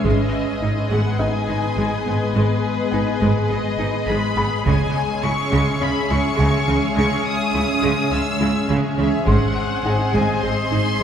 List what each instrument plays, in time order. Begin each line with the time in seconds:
0.03 double bass section G#1, cello section G#2, ambient pad G#3 B3 G#4 D#5, synth arpeggio sound G#3, viola section G#3, violin section G#4 B4 D#5, taiko
0.62 double bass section G#1, cello section G#2, viola section G#3 D#4, synth arpeggio sound D#4
0.90 double bass section G#1, cello section G#2, synth arpeggio sound G#3, viola section G#3, violin section F#5
1.19 double bass section G#1, cello section G#2, viola section G#3 B3, felt piano D#4 D#5, synth arpeggio sound G#4, violin section G#5
1.48 double bass section G#1, cello section G#2, viola section G#3 D#4, synth arpeggio sound D#4
1.77 double bass section G#1, cello section G#2, viola section G#3, synth arpeggio sound G#3
2.06 double bass section G#1, cello section G#2, viola section G#3 B3, synth arpeggio sound B3
2.34 double bass section G#1, cello section G#2, viola section G#3, synth arpeggio sound G#3, violin section B4
2.91 double bass section G#1, cello section G#2, viola section G#3 D#4, synth arpeggio sound D#4, felt piano G#5
3.21 double bass section G#1, cello section G#2, viola section G#3, synth arpeggio sound G#3
3.50 double bass section G#1, cello section G#2, viola section G#3 B3, synth arpeggio sound G#4, violin section D#5
3.79 double bass section G#1, cello section G#2, viola section G#3 D#4, synth arpeggio sound D#4
4.07 double bass section G#1, cello section G#2, viola section G#3, synth arpeggio sound G#3, violin section B5
4.37 double bass section G#1, cello section G#2, viola section G#3 B3, synth arpeggio sound B3, felt piano B5
4.65 double bass section C#2, cello section C#3, synth arpeggio sound C#3, viola section G#3, ambient pad G#3 C#4 G#4 E5, violin section G#4 C#5 G#5, taiko
5.23 double bass section C#2, cello section C#3, viola section G#3 E4, synth arpeggio sound G#3, violin section C#6
5.52 double bass section C#2, cello section C#3, synth arpeggio sound C#3, viola section G#3
5.80 double bass section C#2, cello section C#3, viola section G#3 C#4, synth arpeggio sound C#4, violin section B5
6.09 double bass section C#2, cello section C#3, viola section G#3 E4, synth arpeggio sound G#3, violin section C#6
6.37 double bass section C#2, synth arpeggio sound C#3, cello section C#3, viola section G#3, felt piano G#5
6.68 double bass section C#2, cello section C#3, synth arpeggio sound E3, viola section G#3 C#4
6.96 double bass section C#2, synth arpeggio sound C#3, cello section C#3, viola section G#3, violin section C#6
7.27 violin section D#6
7.54 double bass section C#2, cello section C#3, viola section G#3 E4, synth arpeggio sound G#3
7.83 double bass section C#2, synth arpeggio sound C#3, cello section C#3, viola section G#3
8.12 double bass section C#2, cello section C#3, viola section G#3 C#4, synth arpeggio sound C#4, violin section E6
8.40 double bass section C#2, cello section C#3, viola section G#3 E4, synth arpeggio sound G#3
8.69 double bass section C#2, cello section C#3, synth arpeggio sound C#3, viola section G#3
8.98 double bass section C#2, cello section C#3, synth arpeggio sound E3, viola section G#3 C#4, violin section E5
9.27 double bass section G#1, cello section G#2, viola section G#3, ambient pad G#3 C4 G#4 D#5, synth arpeggio sound G#3, violin section G#4 C5 F#5, felt piano C6, taiko
9.85 double bass section G#1, cello section G#2, viola section G#3 D#4, synth arpeggio sound D#4, felt piano G#5
10.14 double bass section G#1, cello section G#2, synth arpeggio sound G#3, viola section G#3, violin section G#5, taiko
10.43 double bass section G#1, cello section G#2, viola section G#3 C4, synth arpeggio sound G#4, violin section C6
10.72 double bass section G#1, cello section G#2, viola section G#3 D#4, synth arpeggio sound D#4